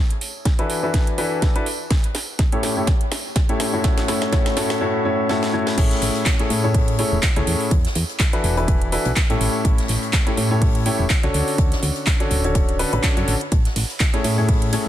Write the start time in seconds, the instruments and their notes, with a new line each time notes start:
0.10 closed hi-hat
0.21 open hi-hat
0.45 kick, snare, closed hi-hat
0.59 grand piano E3 D4 E4 F#4 A4 B4, closed hi-hat
0.70 open hi-hat
0.83 grand piano E3 D4 E4 F#4 A4 B4
0.94 kick, snare, closed hi-hat
1.07 closed hi-hat
1.18 grand piano E3 D4 E4 F#4 A4 B4, open hi-hat
1.42 kick, snare, closed hi-hat
1.56 grand piano D4 E4 F#4 A4 B4, closed hi-hat
1.66 open hi-hat
1.91 kick, snare, closed hi-hat
2.04 closed hi-hat
2.15 snare, open hi-hat
2.39 kick, snare, closed hi-hat
2.52 grand piano A2 C#4 E4 G4 A4 C#5, closed hi-hat
2.63 snare, open hi-hat
2.77 grand piano A2 C#4 E4 G4 A4 C#5
2.87 kick, snare, closed hi-hat
3.01 closed hi-hat
3.12 snare, open hi-hat
3.36 kick, snare, closed hi-hat
3.49 grand piano A2 C#4 E4 G4 A4 C#5, closed hi-hat
3.60 snare, open hi-hat
3.73 grand piano A2 C#4 E4 F#4 A4 C#5
3.84 grand piano C#4 E4 F#4 A4 C#5, kick, snare, closed hi-hat
3.98 snare, closed hi-hat
4.08 grand piano A2 C#4 E4 F#4 A4 C#5, snare, open hi-hat
4.22 snare, closed hi-hat
4.32 grand piano A2 C#4 E4 F#4 A4 C#5, kick, snare, closed hi-hat
4.46 snare, closed hi-hat
4.57 grand piano A2 C#4 E4 F#4 A4 C#5, snare, open hi-hat
4.70 snare
4.81 grand piano A2 C#4 E4 F#4 A4 C#5
5.05 grand piano A2 C#4 E4 F#4 A4 C#5
5.29 grand piano A2 C#4 E4 F#4 A4 C#5, snare
5.43 snare
5.54 grand piano A2 C#4 E4 F#4 A4 C#5
5.67 snare
5.77 fm bass A1, grand piano A2 C#4 E4 G#4 A4 C#5, kick, closed hi-hat, crash
5.91 snare, closed hi-hat
6.02 fm bass A1, snare, closed hi-hat, open hi-hat
6.15 closed hi-hat
6.26 kick, snare, clap, closed hi-hat
6.39 grand piano A2 C#4 E4 G#4 A4 C#5, closed hi-hat
6.50 fm bass A2, closed hi-hat, open hi-hat
6.64 grand piano A2 C#4 E4 G#4 A4 C#5
6.74 kick, closed hi-hat, open hi-hat
6.88 closed hi-hat
6.98 grand piano A2 C#4 E4 G#4 A4 C#5, closed hi-hat, open hi-hat
7.12 fm bass E1
7.22 kick, snare, clap, closed hi-hat
7.36 fm bass C#2, grand piano A2 C#4 E4 G#4 A4 C#5, closed hi-hat
7.47 fm bass E2, closed hi-hat, open hi-hat
7.61 open hi-hat
7.71 fm bass E2, kick, closed hi-hat
7.85 snare, closed hi-hat
7.95 fm bass E2, closed hi-hat, open hi-hat
8.09 closed hi-hat
8.20 kick, snare, clap, closed hi-hat
8.33 grand piano E3 D4 E4 F#4 A4 B4, closed hi-hat
8.44 fm bass E1, closed hi-hat, open hi-hat
8.57 grand piano E3 D4 E4 F#4 A4 B4, closed hi-hat
8.68 kick, closed hi-hat
8.82 closed hi-hat
8.92 grand piano E3 D4 E4 F#4 A4 B4, closed hi-hat, open hi-hat
9.05 fm bass B1, closed hi-hat
9.16 kick, snare, clap, closed hi-hat
9.30 grand piano A2 C#4 E4 G4 A4 C#5, fm bass A2, closed hi-hat
9.41 fm bass A1, closed hi-hat, open hi-hat
9.65 fm bass A1, kick, closed hi-hat
9.78 snare, closed hi-hat
9.88 fm bass A1, snare, closed hi-hat, open hi-hat
10.03 closed hi-hat
10.13 kick, snare, clap, closed hi-hat
10.27 grand piano A2 C#4 E4 G4 A4 C#5, closed hi-hat
10.37 fm bass A2, closed hi-hat, open hi-hat
10.51 grand piano A2 C#4 E4 G4 A4 C#5
10.62 kick, closed hi-hat, open hi-hat
10.75 closed hi-hat
10.86 grand piano A2 C#4 E4 G4 A4 C#5, closed hi-hat, open hi-hat
10.99 fm bass E1
11.10 kick, snare, clap, closed hi-hat
11.23 fm bass C#2, grand piano D3 C#4 D4 F#4 A4 C#5, closed hi-hat
11.34 fm bass D2, closed hi-hat, open hi-hat
11.48 open hi-hat
11.58 fm bass D2, kick, closed hi-hat
11.72 snare, closed hi-hat
11.83 fm bass D2, closed hi-hat, open hi-hat
11.96 closed hi-hat
12.07 kick, snare, clap, closed hi-hat
12.20 grand piano D3 C#4 D4 F#4 A4 C#5, closed hi-hat
12.30 fm bass D1, closed hi-hat, open hi-hat
12.44 grand piano D3 C#4 D4 F#4 A4 C#5, closed hi-hat
12.55 kick, closed hi-hat
12.69 closed hi-hat
12.79 grand piano D3 C#4 D4 F#4 A4 B4, closed hi-hat, open hi-hat
12.93 fm bass A1, grand piano D3 C#4 D4 F#4 A4 B4, closed hi-hat
13.03 grand piano D3 C#4 D4 F#4 A4 C#5, kick, snare, clap, closed hi-hat
13.17 fm bass F#2, grand piano D3 C#4 D4 F#4 A4 C#5, closed hi-hat
13.28 fm bass A1, closed hi-hat, open hi-hat
13.41 closed hi-hat
13.51 fm bass A1, kick, closed hi-hat
13.65 snare, closed hi-hat
13.75 fm bass A1, snare, closed hi-hat, open hi-hat, ride
13.90 closed hi-hat
14.00 kick, snare, clap, closed hi-hat
14.14 grand piano A2 C#4 E4 G#4 A4 C#5, closed hi-hat
14.24 fm bass A2, closed hi-hat, open hi-hat, ride
14.38 grand piano A2 C#4 E4 G#4 A4 C#5
14.48 kick, closed hi-hat, open hi-hat
14.62 closed hi-hat
14.73 grand piano A2 C#4 E4 G#4 A4 C#5, closed hi-hat, open hi-hat, ride